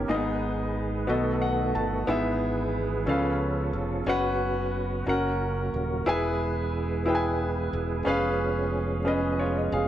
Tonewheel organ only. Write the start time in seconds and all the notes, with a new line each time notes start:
Already playing: D#3 B3
0.10 G#3 G#4 B4
1.09 A3 F#4 A4
2.09 E3 G#3 G#4 B4
3.08 F3 C#4 F4 A4
4.07 C#3 F#3 F#4 B4
5.08 C#3 A#3 A#4
6.08 E3 G#3 B3 G#4 B4
8.06 F3 C#4